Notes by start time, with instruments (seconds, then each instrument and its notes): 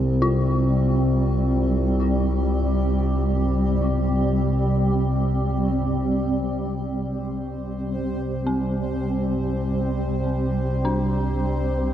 Already playing: synth drone C2 C3, ambient pad G3 C4
0.22 synth bell F4
1.51 ambient pad G4
7.01 synth drone C2 C3, synth texture C5
8.47 synth bell C4
10.85 synth bell D4